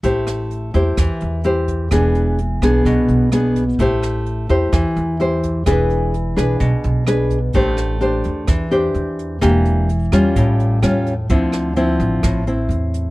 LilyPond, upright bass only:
\new Staff \with { instrumentName = "Upright bass" } { \clef bass \time 4/4 \key a \minor \tempo 4 = 128 a,,4. e,8 e,16 r16 e,4. | e,,4. b,,8 b,,16 r16 b,,4. | a,,4. e,8 e,16 r16 e,4. | e,,4. b,,8 b,,16 r16 b,,4. |
a,,4. e,8 e,4 e,4 | e,,4. e,8 a,,4 e,4 | d,4. a,,8 a,,4 e,4 | }